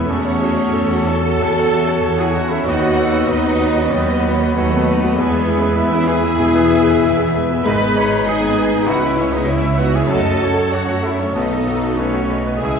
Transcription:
Already playing: B4 B5
0.04 E2 F#3 A3 C#4 E4 A4 C#5 E5
0.09 E2 C#4 A4 A5
0.19 C#4 F#4 F#5
0.25 C#5
0.35 E4 A4 E5
0.40 F#4 G#4
0.52 C#4 F#4 F#5
0.57 C#5
0.71 E2 E4 A4 E5
0.88 C#4 F#4 F#5
1.04 E4 F#4 A4 A5
1.08 C#5 E5
1.21 C#4 F#4
1.25 A4 F#5
1.38 E2 E4 A4
1.42 E2 E5
1.54 C#4 F#4 F#5
1.59 C#5
1.70 E4 F#4 A4 E5
1.87 C#4 F#4 C#5 F#5
2.01 E2 E4 A4 C#5 E5
2.17 C#4 E4 F#4 G#4 F#5 G#5
2.33 D#4 E4 F#4 A4 C#5 E5 F#5
2.47 C#4 E4 F#4 A4 E5 F#5
2.64 D#2 F#3 D#4 F#4 B4 D#5 F#5 B5
2.68 D#2
2.80 B3 B4 D#5 F#5
2.97 D#4 F#4 A4 B4 D#5
3.12 B3 B4 D#5 F#5
3.27 D#2 F#3 B3 D#4 F#4 B4 D#5 B5
3.43 B3 D#5 F#5
3.59 D#4 B4 D#5
3.75 F#4 D#5 F#5
3.79 B3
3.90 D#2 F#3 B3 D#4 B4 D#5
3.94 D#2 B5
4.08 B3 B4 D#5 F#5
4.23 D#4 B4 D#5
4.28 F#4
4.39 B3 D#5 F#5
4.43 B4
4.53 D#2 F#3 A3 D#4 A4 B4 C#5 D#5
4.58 F#4
4.71 B3 D#5 F#5
4.85 D#4 B4 D#5
5.03 B3 F#4 D#5 F#5
5.16 E2 E3 G#3 B3 G#4 B4 G#5 B5
5.20 B4
5.31 B3 G#4 B4 E5
5.47 G#3 E4 B4 G#5
5.56 C#4
5.62 B3 G#4 B4 E5
5.66 B3
5.74 E2 G#3 A3 E4 B4 E5 G#5
5.83 B3
5.90 B3 C#4 E4 G#4 E5
5.94 E5
6.06 G#3 E4 G#4 B4 G#5
6.23 B3 E4 G#4 E5
6.39 E2 B2 G#3 B4 G#5
6.54 B3 G#4 B4 E5
6.71 G#3 E4 B4 G#5
6.84 B4
6.89 B3 G#4 E5
7.02 E2 G#3 E4 B4
7.07 G#5
7.17 B3 G#4
7.22 E5
7.34 G#3 B4 G#5
7.50 B3 E4 G#4 E5
7.64 G#1 G#2 D#3 G#3 B3 G#4 B4 D#5 B5
7.70 D#5
7.80 B3 B4
7.96 D#4 C#5
8.11 G#4 B4
8.26 D#4 G#4 B4 G#5
8.42 B3
8.56 G#3 B4
8.71 B3 D#4
8.86 C#2 E3 B3 D#4 F#4 F#5 B5
8.91 C#5
8.99 C#4 B4
9.04 E4 E5
9.15 E4
9.19 A3 C#4 C#5
9.32 D#4 G#4 B4 D#5
9.37 B3
9.46 E4 C#5
9.50 C#4 E5
9.63 C#4 E4
9.77 B3 D#4 F#4 B4 F#5
9.82 F#4
9.91 C#5
9.95 C#4 E4 G#4 G#5
10.07 F#2 F#3 A3 F#4 A5
10.11 F#2 F#3 A4 D#5
10.21 A4
10.27 A3
10.37 F#4
10.42 C#4 C#5
10.54 F#4 A4
10.71 C#4 F#4 C#5 F#5
10.87 A3 F#4
11.02 F#3 C#4 E4 A4 E5
11.18 A3 C#4 C#5
11.34 B1 B2 F#3 A3 B3 D#4 B4 D#5 A5
11.51 B3 A4
11.66 D#4 F#4 A4
11.83 F#4 A4
11.95 A3 C#4 D#4 C#5
11.99 B4 C#5
12.13 B3 F#4
12.30 A3 A4 D#5
12.44 B3 B4
12.56 C#2 E4 G#4 E5 G#5
12.61 C#2 E3 G#3 E4 G#5

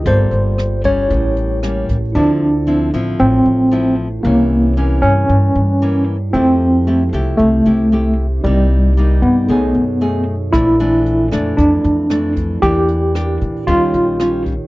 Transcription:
0.02 G1 F4 A4, kick, closed hi-hat
0.06 G3 A#3 F4 A4 C5 D5
0.31 G1, closed hi-hat
0.58 cross-stick, closed hi-hat
0.84 G3 C#4 C#5, kick, closed hi-hat
1.08 A1 A2 E4 G4, kick, closed hi-hat
1.12 A#4 C#5
1.37 closed hi-hat
1.63 G3 A#3 C#4, cross-stick, closed hi-hat
1.89 A1, kick, closed hi-hat
2.12 D2 D3 F3 C4 D4 E4 F4
2.16 E4 A4 C5
2.67 F3 C4 E4
2.94 A1 F3 C4 E4
3.19 A1 A2 C4
3.46 A1
3.71 F3 C4 E4
4.21 C2 A#3 E4 G4 A#4
4.25 C3 E3 A#3 C#4 C#5
4.77 E3 A#3 C#4
5.02 G2 C#4
5.29 G2
5.55 G2
5.82 E3 A#3 C#4
6.31 F2 F3 A3 C4 E4 G4
6.35 G4 A4 C5
6.87 A3 E4 G4
7.13 C2 A3 E4 G4
7.37 C2 C3 A3
7.66 C2 A3 E4 G4
7.92 A3 E4 G4
8.41 C2 G3 D#4 G4 A#4
8.46 C3 G3 A#3 D#4 D5
8.97 G3 A#3 D#4
9.22 G2 B3
9.45 B1 B2 A3 D#4 G#4 A4
9.50 G#4 C#5
9.75 F#2
10.01 A3 D#4 G#4
10.51 A#1 A#2 E3 A3 D4 E4 A4, kick, cross-stick, closed hi-hat
10.55 C5 D5
10.80 E3 A3 D4, closed hi-hat
11.06 closed hi-hat
11.31 F2 E3 A3 D4, cross-stick, closed hi-hat
11.57 F2 D4, kick, closed hi-hat
11.84 F2, closed hi-hat
12.10 E3 A3 D4, cross-stick, closed hi-hat
12.36 kick, closed hi-hat
12.60 E2 E3 A#3 D4 E4 G4 A#4, kick, closed hi-hat
12.66 D5
12.88 closed hi-hat
13.15 A#3 D4 G4, cross-stick, closed hi-hat
13.41 A#2, closed hi-hat
13.64 D#2 D#3 G3 C#4 F4 G4, kick, closed hi-hat
13.68 F4 A#4 C#5
13.94 A#1, closed hi-hat
14.20 G3 C#4 F4, cross-stick, closed hi-hat
14.46 kick, closed hi-hat

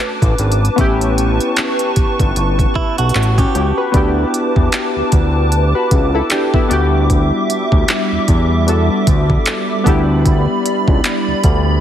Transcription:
Already playing: A3 C#4 D4 F#4 B4 A5 D6
0.22 A1, kick, closed hi-hat
0.38 G#1, closed hi-hat
0.52 closed hi-hat
0.65 closed hi-hat
0.76 A1 B3 C#4 E4 A5 C#6, kick, closed hi-hat
0.81 G4
1.01 closed hi-hat
1.18 closed hi-hat
1.40 closed hi-hat
1.57 clap, closed hi-hat
1.79 closed hi-hat
1.96 G1, kick, closed hi-hat
2.20 G1, kick, closed hi-hat
2.36 G1, closed hi-hat
2.59 kick, closed hi-hat
2.75 B1 E4, kick
2.98 B1 F#4, closed hi-hat
3.09 closed hi-hat
3.15 A1, clap
3.23 closed hi-hat
3.38 C#4 F#4 G4, kick, closed hi-hat
3.55 C#2 C#4 G4, closed hi-hat
3.78 F#4 B4
3.92 D2 B3 D4 E4 B4 A5 D6, kick, closed hi-hat
3.97 G4
4.34 closed hi-hat
4.56 E2, kick
4.72 clap, closed hi-hat
4.96 D2
5.12 D2, kick, closed hi-hat
5.52 closed hi-hat
5.75 F#4 B4
5.91 C#2, kick, closed hi-hat
6.15 E4 A4
6.30 D4 G4, clap, closed hi-hat
6.54 B3 E4, kick
6.68 D2 G3 B3 D4 F#4 E5, closed hi-hat
6.73 G4
7.10 kick, closed hi-hat
7.50 closed hi-hat
7.72 D2, kick
7.88 clap, closed hi-hat
8.12 E2
8.28 E2, kick, closed hi-hat
8.67 B3 D4 F#4 A4, closed hi-hat
9.07 D2, kick, closed hi-hat
9.30 kick
9.46 clap, closed hi-hat
9.84 D2 B3 D4 E4 D5 B5, kick, closed hi-hat
9.89 G4
10.26 kick, closed hi-hat
10.66 closed hi-hat
10.88 C#2, kick
11.04 clap, closed hi-hat
11.28 D2
11.44 D2, kick, closed hi-hat

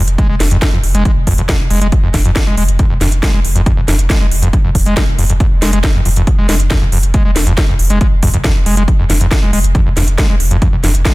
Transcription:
0.08 F1, closed hi-hat
0.18 G#3, kick, closed hi-hat
0.29 F1 G#3
0.40 F1, snare, open hi-hat
0.51 F1 F2, closed hi-hat
0.62 F2, kick, snare, closed hi-hat
0.73 F1 F2
0.83 F1, open hi-hat
0.94 F1 G#3, closed hi-hat
1.05 kick, closed hi-hat
1.16 F1
1.27 F1 F2, kick, open hi-hat
1.38 F1 F2, closed hi-hat
1.49 F2, kick, snare, closed hi-hat
1.60 F1
1.70 F1 G#3, open hi-hat
1.81 F1 G#3, closed hi-hat
1.92 kick, closed hi-hat
2.03 F1 F2
2.14 F1 F2, kick, snare, open hi-hat
2.25 F1 F2, closed hi-hat
2.36 kick, snare, closed hi-hat
2.47 F1 G#3
2.57 F1 G#3, open hi-hat
2.68 F1, closed hi-hat
2.79 F2, kick, closed hi-hat
2.90 F1 F2
3.01 F1 F2, snare, open hi-hat
3.12 F1, closed hi-hat
3.23 G#3, kick, snare, closed hi-hat
3.34 F1 G#3
3.45 F1, open hi-hat
3.56 F1 F2, closed hi-hat
3.66 F2, kick, closed hi-hat
3.77 F1 F2
3.88 F1 F2, snare, open hi-hat
3.99 F1, closed hi-hat
4.10 G#3, kick, snare, closed hi-hat
4.21 F1 G#3
4.31 F1, open hi-hat
4.42 F1 F2, closed hi-hat
4.53 F2, kick, closed hi-hat
4.64 F1 F2
4.75 F1, kick, open hi-hat
4.86 F1 G#3, closed hi-hat
4.97 kick, snare, closed hi-hat
5.08 F1
5.18 F1 F2, open hi-hat
5.29 F1 F2, closed hi-hat
5.40 F2, kick, closed hi-hat
5.51 F1
5.62 F1 G#3, snare, open hi-hat
5.73 F1 G#3, closed hi-hat
5.84 kick, snare, closed hi-hat
5.95 F1 F2
6.05 F1 F2, open hi-hat
6.16 F1 F2, closed hi-hat
6.27 kick, closed hi-hat
6.38 F1 G#3
6.49 F1 G#3, snare, open hi-hat
6.60 F1, closed hi-hat
6.71 F2, kick, snare, closed hi-hat
6.82 F1 F2
6.92 F1 F2, open hi-hat
7.03 F1, closed hi-hat
7.14 G#3, kick, closed hi-hat
7.25 F1 G#3
7.36 F1, snare, open hi-hat
7.47 F1 F2, closed hi-hat
7.58 F2, kick, snare, closed hi-hat
7.69 F1 F2
7.79 F1, open hi-hat
7.90 F1 G#3, closed hi-hat
8.01 kick, closed hi-hat
8.12 F1
8.23 F1 F2, kick, open hi-hat
8.34 F1 F2, closed hi-hat
8.44 F2, kick, snare, closed hi-hat
8.55 F1
8.66 F1 G#3, open hi-hat
8.77 F1 G#3, closed hi-hat
8.88 kick, closed hi-hat
8.99 F1 F2
9.10 F1 F2, snare, open hi-hat
9.21 F1 F2, closed hi-hat
9.31 kick, snare, closed hi-hat
9.42 F1 G#3
9.53 F1 G#3, open hi-hat
9.64 F1, closed hi-hat
9.75 F2, kick, closed hi-hat
9.86 F1 F2
9.97 F1 F2, snare, open hi-hat
10.08 F1, closed hi-hat
10.18 G#3, kick, snare, closed hi-hat
10.29 F1 G#3
10.40 F1, open hi-hat
10.51 F1 F2, closed hi-hat
10.62 F2, kick, closed hi-hat
10.73 F1 F2
10.84 F1 F2, snare, open hi-hat
10.95 F1, closed hi-hat
11.05 G#3, kick, snare, closed hi-hat

